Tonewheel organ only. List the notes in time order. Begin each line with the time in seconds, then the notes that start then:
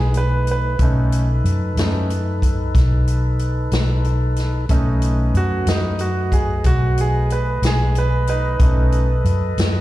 Already playing: A3 D#4 B4
0.78 D#4 A4 B4
4.70 A3 B4 D#5
8.59 A4 B4 D#5